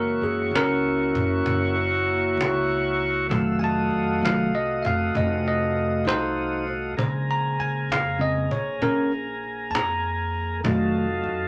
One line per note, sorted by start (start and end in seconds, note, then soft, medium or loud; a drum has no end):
0.00 0.19 F#1 medium
0.00 0.49 E3 soft
0.00 0.50 G#3 soft
0.00 0.50 A#3 soft
0.00 3.28 A#3 medium
0.00 3.27 E4 medium
0.00 3.27 F#4 medium
0.00 0.23 A#4 medium
0.00 3.27 C#5 medium
0.22 0.51 F#2 medium
0.22 0.53 G#4 medium
0.22 cajon slap soft
0.51 1.10 C#2 medium
0.55 1.74 C#4 medium
0.55 1.74 A#4 medium
0.55 cajon slap loud
0.85 cajon slap soft
1.15 1.44 F#1 medium
1.15 cajon bass medium
1.45 2.34 F#1 medium
1.45 cajon bass medium
1.45 cajon slap soft
1.77 cajon slap soft
2.08 cajon slap soft
2.37 3.26 C#2 medium
2.37 cajon slap loud
2.71 cajon slap soft
3.01 cajon slap soft
3.29 3.88 F1 medium
3.29 4.21 D#3 soft
3.29 4.21 F#3 soft
3.29 3.61 A3 medium
3.29 4.22 A3 soft
3.29 3.60 F4 medium
3.29 3.60 F#4 medium
3.29 3.61 E5 medium
3.29 cajon bass loud
3.59 6.95 A3 medium
3.59 6.94 F4 medium
3.59 6.94 F#4 medium
3.59 6.94 D#5 medium
3.59 3.63 G#5 medium
3.59 cajon slap soft
3.64 4.22 A5 medium
3.90 4.19 F2 medium
3.90 cajon slap soft
4.21 4.79 C2 medium
4.21 4.50 D#3 soft
4.21 4.50 F#3 soft
4.21 4.50 A3 soft
4.21 4.54 F5 medium
4.21 cajon slap loud
4.54 4.84 D#5 medium
4.54 cajon slap soft
4.83 5.13 F1 medium
4.83 4.86 E5 soft
4.83 5.15 F5 medium
4.83 cajon bass medium
5.15 6.02 F1 medium
5.15 5.45 D#5 medium
5.15 cajon bass medium
5.15 cajon slap soft
5.46 6.06 D#5 medium
5.46 cajon slap soft
5.77 cajon slap soft
6.05 6.93 C2 loud
6.05 6.64 D#4 medium
6.05 6.66 C5 medium
6.05 cajon slap loud
6.38 cajon slap soft
6.69 cajon slap soft
6.71 cajon slap soft
6.97 7.55 A#1 medium
6.97 8.18 C#3 soft
6.97 8.18 G#3 soft
6.97 10.61 A#3 medium
6.97 10.60 G#4 medium
6.97 10.60 A#4 medium
6.97 10.61 C5 soft
6.97 cajon bass loud
7.29 7.59 A#5 medium
7.29 cajon slap soft
7.59 7.87 A#2 medium
7.59 7.89 G#5 medium
7.59 cajon slap soft
7.89 8.46 F2 medium
7.89 8.20 F5 medium
7.89 cajon slap loud
8.19 8.47 C#3 soft
8.19 8.47 G#3 soft
8.19 8.47 C4 soft
8.19 8.50 D#5 medium
8.19 cajon slap soft
8.51 8.79 A#1 medium
8.51 8.81 C#5 medium
8.51 cajon bass medium
8.81 9.69 A#1 loud
8.81 9.10 C#4 medium
8.81 9.12 A#4 medium
8.81 cajon bass medium
8.81 cajon slap soft
9.12 cajon slap soft
9.43 cajon slap soft
9.70 10.59 F2 medium
9.70 9.74 A5 medium
9.75 10.63 A#5 medium
9.75 cajon slap loud
10.04 cajon slap soft
10.34 cajon slap soft
10.64 11.21 F1 medium
10.64 11.05 D#3 soft
10.64 11.48 F#3 medium
10.64 11.05 F#3 soft
10.64 11.05 A3 soft
10.64 11.48 D#4 medium
10.64 11.48 F4 medium
10.64 11.48 A4 medium
10.64 cajon bass loud
10.95 cajon slap soft
11.23 11.48 F2 medium
11.23 cajon slap soft